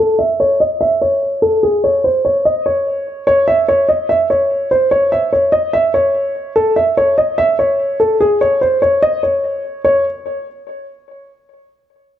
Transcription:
0.00 A4
0.19 E5
0.40 C#5
0.60 D#5
0.81 E5
1.01 C#5
1.42 A4
1.63 G#4
1.84 C#5
2.04 C5
2.25 C#5
2.45 D#5
2.66 C#5
3.27 C#5
3.48 E5
3.68 C#5
3.89 D#5
4.09 E5
4.30 C#5
4.71 C5
4.91 C#5
5.12 E5
5.33 C#5
5.52 D#5
5.73 E5
5.94 C#5
6.56 A4
6.76 E5
6.97 C#5
7.18 D#5
7.38 E5
7.59 C#5
8.00 A4
8.21 G#4
8.41 C#5
8.61 C5
8.82 C#5
9.02 D#5
9.23 C#5
9.85 C#5

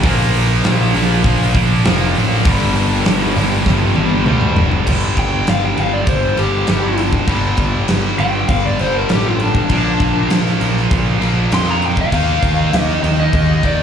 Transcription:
0.03 A#1 A#2 F3 A#3, kick, open hi-hat
0.34 open hi-hat
0.64 A#1, snare, open hi-hat
0.94 A#1 A#2 F3 A#3, open hi-hat
1.24 A#1 A#2 F3 A#3, kick, open hi-hat
1.54 A#1 A#2 F3 A#3, kick, open hi-hat
1.85 F1 A#2 F3 A#3, snare, open hi-hat
2.15 A1, open hi-hat
2.45 G1 G2 D3 G3, kick, open hi-hat
2.76 open hi-hat
3.05 G1, snare, open hi-hat
3.36 G1 G2 D3 G3, open hi-hat
3.66 G1 G2 D3 G3, kick, snare
3.96 G1 G2 D3 G3, high tom
4.26 D2 G2 D3 G3, mid tom
4.41 mid tom
4.56 F1, floor tom
4.72 floor tom
4.87 G1 G2 D3 G3, kick, crash
5.17 G1 G5, kick, crash
5.47 G1 F5, snare, crash
5.65 G5
5.75 G1 G2 D3 G3 F5, crash
5.93 D5
6.07 G1 C5, kick, crash
6.37 G1 G2 D3 G3 G4, crash
6.67 G1 G2 D3 G3, snare, crash
6.97 crash
7.13 kick
7.27 G1 G2 D3 G3, kick, crash
7.57 G1, kick, crash
7.88 G1, snare, crash
8.18 G1 G2 D3 G3 G5, crash
8.48 G1 F5, kick, crash
8.65 D5
8.79 G1 G2 D3 G3 C5, crash
8.96 A#4
9.09 A1 G2 D3 G3 G4, snare, crash
9.28 F4
9.40 D4, crash
9.55 kick
9.69 A#1 A#2 F3 A#3 D4, kick, crash
10.00 A#1, kick, crash
10.30 A#1, snare, crash
10.47 snare
10.60 A#1 A#2 F3 A#3, crash
10.77 snare
10.91 A#1, kick, crash
11.21 A#1 A#2 F3 A#3, crash
11.52 F2 A#2 F3 A#3 C6, snare, crash
11.70 A#5
11.82 G5, crash
11.97 F5, kick
12.12 D#2 D#3 A#3 D#4, kick, crash
12.43 D#2, kick, crash
12.73 D#2, snare, crash
12.80 D#5
13.02 D#2 D#3 A#3 D#4, crash
13.20 D#5
13.33 D#2 D#5, kick, crash
13.63 D#2 D#3 A#3 D#4 D5, kick, crash

